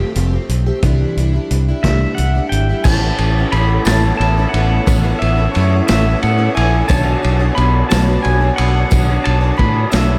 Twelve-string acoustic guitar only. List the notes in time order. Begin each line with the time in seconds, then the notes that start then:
Already playing: F3 A3 C4 G4
0.15 F3 A3 C4 G4
0.33 A3 C4 G4
0.66 A3 C4 G4
0.84 C3 E3 G3 D4 E4
1.17 E3 G3 D4 E4
1.34 G3 D4 E4
1.69 G3 D4 E4
1.85 C3 E3 G3 D4 E4
2.17 E3 G3 D4 E4
2.35 G3 D4 E4
2.69 G3 D4 E4
2.87 A2 A3 B3 C#4 E4
3.04 B3 C#4 E4
3.38 B3 C#4 E4
3.54 A3 B3 C#4 E4
3.88 A2 A3 B3 C#4 E4
4.04 B3 C#4 E4
4.38 B3 C#4 E4
4.54 A3 B3 C#4 E4
4.86 A2 A3 B3 C#4 E4
5.03 B3 C#4 E4
5.37 B3 C#4 E4
5.54 A3 B3 C#4 E4
5.88 A2 A3 B3 C#4 E4
6.04 B3 C#4 E4
6.37 B3 C#4 E4
6.55 A3 B3 C#4 E4
6.88 B2 F#3 B3 D4 F#4 C#5
7.05 B3 D4 F#4 C#5
7.39 B3 D4 F#4 C#5
7.56 B3 D4 F#4 C#5
7.90 B2 F#3 B3 D4 F#4 C#5
8.08 B3 D4 F#4 C#5
8.40 B3 D4 F#4 C#5
8.57 B3 D4 F#4 C#5
8.90 B2 F#3 B3 D4 F#4 C#5
9.08 B3 D4 F#4 C#5
9.41 B3 D4 F#4 C#5
9.57 B3 D4 F#4 C#5
9.91 B2 F#3 B3 D4 F#4 C#5
10.07 B3 D4 F#4 C#5